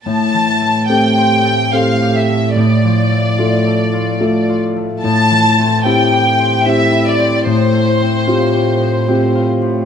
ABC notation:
X:1
M:3/4
L:1/8
Q:1/4=73
K:Am
V:1 name="Violin section"
a2 g2 f e | d4- d z | a2 g2 e d | c4- c z |]
V:2 name="Grand piano"
A,,2 [CGA]2 [CGA]2 | A,,2 [A,FA]2 [A,FA]2 | A,,2 [CEG]2 [CEG]2 | A,,2 [CFG]2 [CFG]2 |]
V:3 name="Harp"
(3A,, E, A, (3G c A (3c G A, | (3A,, F, A, (3F A F (3A F A, | (3A,, E, C (3E G c (3G E C | (3A,, A, C (3F G c (3G F C |]
V:4 name="Cello section" clef=bass
A,,6- | A,,6 | A,,6- | A,,6 |]